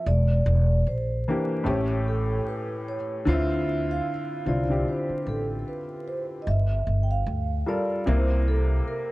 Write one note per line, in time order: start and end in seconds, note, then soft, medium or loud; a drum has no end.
0.06 0.42 E1 medium
0.06 0.89 D5 medium
0.46 0.82 E1 loud
0.87 1.22 A#1 medium
0.87 1.69 C5 medium
1.28 1.67 E3 medium
1.28 1.67 A#3 medium
1.28 1.68 D4 medium
1.28 1.65 G4 medium
1.64 2.38 A1 medium
1.64 2.94 A2 medium
1.64 2.94 A3 medium
1.64 2.95 C#4 medium
1.64 2.95 G4 medium
1.64 2.43 C#5 medium
2.08 2.44 A4 medium
2.48 2.88 B4 medium
2.88 3.28 C#5 medium
3.25 3.98 D2 loud
3.25 4.08 D3 loud
3.25 4.09 C4 medium
3.25 4.09 E4 medium
3.25 4.10 F4 loud
3.25 3.91 E5 medium
3.91 4.43 F5 medium
4.46 4.82 C2 medium
4.46 4.61 D3 medium
4.46 4.62 C4 medium
4.46 4.62 E4 medium
4.46 4.62 F4 medium
4.46 4.88 D5 medium
4.69 5.77 D3 medium
4.69 5.78 C4 medium
4.69 5.78 E4 medium
4.69 5.78 G4 medium
4.88 5.19 C5 medium
5.09 muted upright bass stroke soft
5.22 5.27 B4 medium
5.26 5.62 A1 medium
5.26 5.46 A4 medium
5.68 6.08 B4 medium
6.08 6.22 C5 medium
6.42 6.47 D#5 medium
6.47 6.82 G1 medium
6.47 7.03 E5 medium
6.87 7.22 G1 medium
7.03 7.10 G5 medium
7.11 7.63 F5 medium
7.26 7.62 D2 medium
7.66 8.06 G3 medium
7.66 8.06 F4 medium
7.66 8.07 A4 medium
7.66 8.07 A#4 medium
7.66 8.04 D5 medium
8.06 8.78 C2 loud
8.06 9.12 C3 medium
8.06 9.12 A#3 medium
8.06 9.12 C4 medium
8.06 9.12 E4 medium
8.06 8.48 C5 medium
8.48 8.66 A4 medium
8.88 9.12 A#4 medium